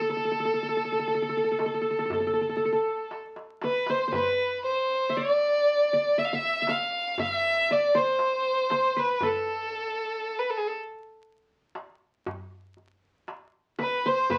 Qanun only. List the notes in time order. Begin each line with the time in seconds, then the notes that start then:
0.01 A4
0.10 A4
0.17 A4
0.25 A4
0.32 A4
0.40 A4
0.45 A4
0.54 A4
0.63 A4
0.69 A4
0.77 A4
0.85 A4
0.92 A4
0.99 A4
1.08 A4
1.15 A4
1.22 A4
1.29 A4
1.37 A4
1.44 A4
1.51 A4
1.59 A4
1.66 A4
1.74 A4
1.81 A4
1.91 A4
1.99 A4
2.05 A4
2.13 A4
2.20 A4
2.27 A4
2.34 A4
2.41 A4
2.49 A4
2.57 A4
2.65 A4
2.72 A4
3.64 B4
3.90 C5
4.08 C5
4.15 B4
5.09 E5
5.17 D5
5.93 D5
6.18 E5
6.33 E5
6.62 E5
6.69 F5
7.20 E5
7.71 D5
7.95 C5
8.71 C5
8.97 B4
9.23 A4
13.79 B4
14.06 C5
14.30 B4